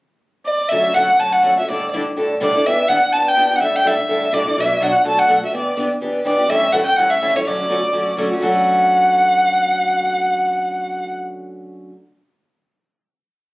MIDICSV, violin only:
0, 0, Header, 1, 2, 480
1, 0, Start_track
1, 0, Key_signature, 2, "major"
1, 0, Tempo, 241546
1, 1393, Time_signature, 4, 2, 24, 8
1, 26897, End_track
2, 0, Start_track
2, 0, Title_t, "Violin"
2, 0, Program_c, 0, 40
2, 905, Note_on_c, 0, 74, 76
2, 1366, Note_on_c, 0, 76, 84
2, 1396, Note_off_c, 0, 74, 0
2, 1869, Note_on_c, 0, 78, 92
2, 1899, Note_off_c, 0, 76, 0
2, 2374, Note_on_c, 0, 81, 97
2, 2404, Note_off_c, 0, 78, 0
2, 2630, Note_on_c, 0, 78, 85
2, 2660, Note_off_c, 0, 81, 0
2, 3106, Note_off_c, 0, 78, 0
2, 3157, Note_on_c, 0, 76, 76
2, 3329, Note_off_c, 0, 76, 0
2, 3403, Note_on_c, 0, 74, 77
2, 3808, Note_off_c, 0, 74, 0
2, 4809, Note_on_c, 0, 74, 85
2, 5292, Note_on_c, 0, 76, 92
2, 5321, Note_off_c, 0, 74, 0
2, 5724, Note_on_c, 0, 78, 100
2, 5754, Note_off_c, 0, 76, 0
2, 6208, Note_on_c, 0, 81, 97
2, 6238, Note_off_c, 0, 78, 0
2, 6519, Note_on_c, 0, 79, 98
2, 6549, Note_off_c, 0, 81, 0
2, 7071, Note_on_c, 0, 78, 83
2, 7100, Note_off_c, 0, 79, 0
2, 7190, Note_off_c, 0, 78, 0
2, 7206, Note_on_c, 0, 76, 82
2, 7469, Note_on_c, 0, 79, 97
2, 7498, Note_off_c, 0, 76, 0
2, 7689, Note_on_c, 0, 76, 84
2, 7719, Note_off_c, 0, 79, 0
2, 8618, Note_on_c, 0, 74, 85
2, 8647, Note_off_c, 0, 76, 0
2, 9144, Note_on_c, 0, 76, 83
2, 9173, Note_off_c, 0, 74, 0
2, 9594, Note_on_c, 0, 78, 84
2, 9624, Note_off_c, 0, 76, 0
2, 10048, Note_off_c, 0, 78, 0
2, 10081, Note_on_c, 0, 81, 88
2, 10312, Note_on_c, 0, 78, 94
2, 10342, Note_off_c, 0, 81, 0
2, 10781, Note_off_c, 0, 78, 0
2, 10833, Note_on_c, 0, 76, 74
2, 11000, Note_off_c, 0, 76, 0
2, 11073, Note_on_c, 0, 74, 75
2, 11475, Note_off_c, 0, 74, 0
2, 12437, Note_on_c, 0, 74, 84
2, 12912, Note_on_c, 0, 76, 101
2, 12941, Note_off_c, 0, 74, 0
2, 13358, Note_on_c, 0, 78, 96
2, 13388, Note_off_c, 0, 76, 0
2, 13619, Note_off_c, 0, 78, 0
2, 13631, Note_on_c, 0, 79, 97
2, 13827, Note_on_c, 0, 78, 99
2, 13857, Note_off_c, 0, 79, 0
2, 14115, Note_on_c, 0, 76, 100
2, 14145, Note_off_c, 0, 78, 0
2, 14623, Note_on_c, 0, 73, 82
2, 14653, Note_off_c, 0, 76, 0
2, 14839, Note_on_c, 0, 74, 87
2, 14868, Note_off_c, 0, 73, 0
2, 16263, Note_off_c, 0, 74, 0
2, 16706, Note_on_c, 0, 78, 91
2, 22074, Note_off_c, 0, 78, 0
2, 26897, End_track
0, 0, End_of_file